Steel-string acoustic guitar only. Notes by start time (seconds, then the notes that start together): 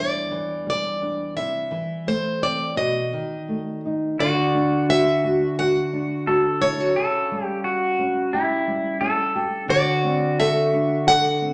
0.00 D5
0.70 D5
1.37 E5
2.08 C5
2.43 D5
2.77 D#5
4.20 D5
4.90 E5
5.59 F#5
6.62 C#5
9.70 D5
10.40 E5
11.08 F#5